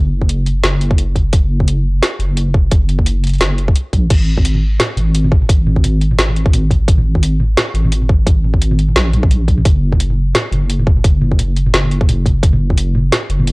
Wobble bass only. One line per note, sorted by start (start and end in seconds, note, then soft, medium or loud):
0.00 0.63 F#1 loud
0.64 1.32 F#1 medium
1.33 2.01 F#1 medium
2.19 2.70 F#1 medium
2.71 3.40 F#1 medium
3.41 3.74 F#1 medium
3.93 4.09 A#1 loud
4.10 4.79 G#1 medium
4.97 5.48 G#1 loud
5.49 6.17 G#1 loud
6.18 6.87 G#1 medium
6.88 7.56 G#1 medium
7.74 8.25 G#1 loud
8.26 8.95 G#1 loud
8.96 9.64 A#1 loud
9.65 10.33 F#1 medium
10.52 11.03 F#1 medium
11.04 11.72 F#1 loud
11.74 12.42 F#1 loud
12.43 13.11 F#1 loud
13.30 13.52 F#1 medium